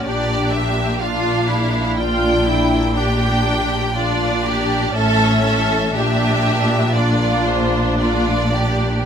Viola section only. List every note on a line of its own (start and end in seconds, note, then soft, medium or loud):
0.05 1.00 D4 medium
1.02 1.96 D4 medium
1.98 2.46 F4 medium
2.46 2.96 E4 medium
2.96 3.92 D4 medium
3.94 4.91 D4 medium
4.93 5.94 C#4 medium
5.94 6.92 D4 medium
6.94 9.05 D4 medium